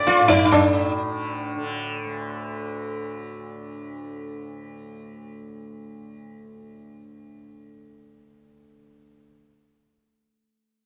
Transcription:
0.00 2.03 D2 medium
0.00 0.20 A2 medium
0.00 1.03 D3 medium
0.00 0.18 D5 soft
0.07 0.31 F4 loud
0.07 tabla ke medium
0.19 0.53 A2 medium
0.19 0.40 D5 soft
0.28 0.44 D#4 loud
0.28 tabla tin medium
0.28 tabla ge medium
0.45 0.51 D#4 medium
0.52 7.68 A2 medium
0.52 3.77 D4 medium
0.52 tabla na loud
0.52 tabla ge loud
1.03 1.56 D3 medium
1.56 8.71 D3 medium
2.03 9.18 D2 medium

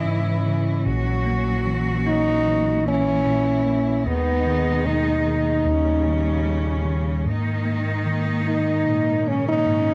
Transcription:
0.00 0.06 G#2 medium
0.00 0.82 G#2 medium
0.00 0.42 C#3 medium
0.00 0.83 E3 medium
0.00 0.88 E3 medium
0.00 4.02 C#4 medium
0.00 0.83 E4 loud
0.00 0.83 D#5 medium
0.06 0.83 G#2 medium
0.47 0.85 C#3 medium
0.86 4.02 A#1 medium
0.86 4.03 A#2 medium
0.86 3.25 A#2 medium
0.86 4.03 E3 medium
0.86 2.82 F#3 medium
0.86 2.82 F#4 loud
1.26 2.05 A#3 medium
1.66 2.45 E3 medium
2.06 2.85 A#3 medium
2.06 2.83 D#4 loud
2.46 4.02 E3 medium
2.86 4.03 E3 medium
2.86 3.65 A#3 medium
2.86 4.03 C#4 loud
2.86 4.04 E4 medium
3.26 4.04 A#2 medium
3.66 4.05 A#3 medium
4.05 7.23 D#2 medium
4.05 5.62 D#2 medium
4.05 5.64 B2 medium
4.05 5.64 D#3 medium
4.05 5.63 D#3 medium
4.05 5.64 G#3 medium
4.05 4.89 B3 medium
4.05 5.63 D#4 loud
4.46 5.25 D#3 medium
4.86 5.63 B2 medium
4.86 6.87 D#4 medium
5.26 5.65 D#3 medium
5.65 7.22 D#2 medium
5.65 7.24 A#2 medium
5.65 7.23 C#3 medium
5.65 7.24 G3 medium
5.65 7.22 C#4 medium
6.06 6.84 D#3 medium
6.46 7.23 G3 medium
6.85 7.24 D#3 medium
7.25 9.94 G#2 medium
7.25 9.65 G#2 medium
7.25 9.22 D#3 medium
7.25 9.94 A#3 medium
7.25 9.22 D#4 medium
7.65 8.45 A#3 medium
8.06 9.62 D#3 medium
8.46 9.25 A#3 medium
8.46 9.30 D#4 medium
8.86 9.94 A#2 medium
9.26 9.94 C#3 medium
9.26 9.94 A#3 medium
9.26 9.94 C#4 medium
9.26 9.47 C#4 medium
9.48 9.94 D#4 loud
9.66 9.94 G#2 medium

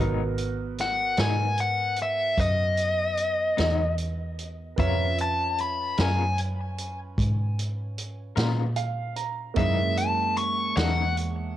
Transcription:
0.00 1.15 G#1 medium
0.00 0.22 G#2 medium
0.00 0.22 F#3 medium
0.00 0.23 B3 medium
0.00 4.73 B3 medium
0.00 0.23 D#4 medium
0.00 4.73 F#4 soft
0.00 4.74 A#4 medium
0.38 closed hi-hat medium
0.78 1.18 F#5 medium
0.78 snare soft
0.78 closed hi-hat soft
1.17 2.35 G#2 medium
1.17 1.43 G#2 soft
1.17 1.43 F#3 soft
1.17 1.42 B3 soft
1.17 1.42 D#4 soft
1.17 1.58 G#5 medium
1.17 snare medium
1.17 closed hi-hat medium
1.58 1.98 F#5 medium
1.58 closed hi-hat medium
1.96 closed hi-hat medium
2.02 2.39 E5 medium
2.38 3.54 F#2 medium
2.38 3.95 D#5 medium
2.38 kick medium
2.38 closed hi-hat medium
2.77 closed hi-hat medium
3.17 closed hi-hat medium
3.57 4.75 E2 medium
3.57 3.82 G#2 soft
3.57 3.82 F#3 medium
3.57 3.81 B3 medium
3.57 3.81 D#4 medium
3.57 snare medium
3.57 closed hi-hat medium
3.98 closed hi-hat medium
4.39 closed hi-hat soft
4.76 5.94 F2 medium
4.76 5.02 C#3 medium
4.76 5.02 B3 medium
4.76 9.53 C#4 soft
4.76 9.53 F4 soft
4.76 5.03 F4 medium
4.76 5.03 A#4 medium
4.76 9.52 B4 soft
4.76 9.54 C#5 medium
4.76 5.17 E5 medium
4.76 kick medium
4.76 closed hi-hat medium
5.18 5.58 A5 medium
5.18 closed hi-hat soft
5.58 5.98 B5 medium
5.58 closed hi-hat soft
5.97 7.14 F#2 medium
5.97 6.22 C#3 soft
5.97 6.22 B3 soft
5.97 6.22 F4 soft
5.97 6.21 A#4 medium
5.97 6.38 G#5 medium
5.97 snare loud
5.97 closed hi-hat medium
6.38 closed hi-hat soft
6.78 closed hi-hat medium
7.18 8.34 G#2 medium
7.18 kick medium
7.18 closed hi-hat medium
7.59 closed hi-hat medium
7.98 closed hi-hat soft
8.36 9.53 A#2 medium
8.36 8.61 C#3 soft
8.36 8.61 B3 medium
8.36 8.61 F4 medium
8.36 8.60 A#4 medium
8.36 snare medium
8.36 closed hi-hat medium
8.76 9.14 F5 medium
8.76 closed hi-hat medium
9.16 9.54 A#5 medium
9.16 closed hi-hat medium
9.54 9.80 F#2 medium
9.54 10.73 F#2 medium
9.54 9.81 E3 medium
9.54 11.57 G#3 medium
9.54 11.57 A#3 soft
9.54 9.81 A#3 medium
9.54 11.57 C#4 soft
9.54 9.81 D#4 medium
9.54 11.57 E4 soft
9.54 9.96 E5 medium
9.54 kick medium
9.54 closed hi-hat medium
9.97 10.36 A5 medium
9.97 closed hi-hat medium
10.37 10.76 C#6 medium
10.37 closed hi-hat soft
10.77 11.57 E2 medium
10.77 11.02 F#2 soft
10.77 11.01 E3 soft
10.77 11.01 A#3 medium
10.77 11.00 D#4 medium
10.77 11.15 F#5 medium
10.77 snare medium
10.77 closed hi-hat medium
11.17 closed hi-hat medium

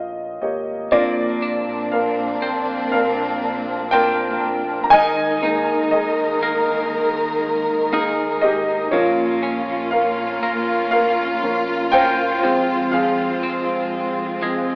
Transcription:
0.00 0.39 A#1 medium
0.00 0.38 A#3 soft
0.00 0.89 F4 soft
0.00 0.41 C#5 soft
0.00 0.39 D#5 medium
0.00 0.95 F5 medium
0.00 0.94 G5 soft
0.00 0.95 A#5 medium
0.42 0.89 G#1 medium
0.42 0.90 A#3 soft
0.42 0.54 G4 soft
0.42 0.89 C#5 medium
0.42 0.53 D#5 medium
0.92 1.64 A#1 loud
0.92 4.93 A#2 medium
0.92 1.59 A#3 medium
0.92 4.89 A#3 medium
0.92 4.88 C4 medium
0.92 1.59 C4 soft
0.92 4.89 D4 medium
0.92 1.60 D4 medium
0.92 1.89 F4 medium
0.92 1.88 D5 medium
1.42 3.92 D4 medium
1.68 2.39 A#1 medium
1.92 2.89 A#4 medium
1.92 2.90 F5 medium
2.42 2.89 A#1 loud
2.42 3.91 C4 medium
2.92 4.39 A#1 loud
2.92 3.89 A#4 medium
2.92 3.95 F5 medium
3.91 5.03 C4 medium
3.91 5.03 D4 medium
3.91 5.03 F4 medium
3.91 4.82 A#4 medium
3.91 4.88 G5 loud
4.43 4.89 A#1 medium
4.84 4.92 A#5 medium
4.90 5.64 D#1 loud
4.90 8.88 D#3 medium
4.90 8.93 D#3 medium
4.90 8.89 G#3 medium
4.90 8.89 D#4 medium
4.90 8.89 A#4 medium
4.90 5.89 D#5 medium
4.90 5.95 G#5 loud
5.42 6.88 G#3 medium
5.42 6.89 A#3 soft
5.42 7.92 D#4 medium
5.42 6.89 D#4 medium
5.67 6.39 D#1 medium
5.91 7.89 G#4 medium
5.91 7.88 D#5 medium
6.43 6.89 D#1 loud
6.43 7.92 A#3 medium
6.93 8.39 D#1 loud
7.92 8.38 G#3 soft
7.92 8.39 A#3 soft
7.92 10.42 A#3 medium
7.92 8.39 D#4 medium
7.92 9.03 D#4 medium
7.92 9.03 G#4 medium
8.41 8.89 G#1 medium
8.41 8.90 G4 medium
8.41 8.94 D#5 medium
8.91 9.64 A#1 loud
8.91 12.43 A#2 medium
8.91 10.38 F3 medium
8.91 10.39 A#3 medium
8.91 12.40 A#3 medium
8.91 10.39 C#4 medium
8.91 12.40 C#4 medium
8.91 9.89 F4 medium
8.91 14.75 F4 medium
8.91 9.88 C#5 medium
9.43 11.92 C#4 medium
9.68 10.39 A#1 medium
9.91 10.89 A#4 medium
9.91 10.89 F5 medium
10.43 10.89 A#1 loud
10.43 11.92 A#3 medium
10.91 12.39 A#1 loud
10.91 11.89 A#4 medium
10.91 11.95 F5 loud
11.43 11.89 F3 soft
11.43 11.89 A#3 soft
11.43 11.89 C#4 medium
11.92 12.53 A#3 medium
11.92 12.53 C#4 medium
11.92 14.75 F4 medium
11.92 12.89 C5 medium
11.92 12.95 G5 loud
12.42 13.64 F1 medium
12.42 12.92 F2 medium
12.42 13.09 F3 medium
12.42 13.10 G#3 medium
12.42 14.75 G#3 medium
12.42 14.75 C4 medium
12.42 13.10 C4 medium
12.92 14.75 F2 medium
12.92 14.75 G#4 medium
12.92 14.75 F5 medium
13.43 14.75 C4 medium
13.68 14.39 F1 medium
14.42 14.75 F1 loud
14.42 14.75 F3 soft
14.42 14.75 G#3 medium
14.42 14.75 G#3 soft
14.42 14.75 C4 medium

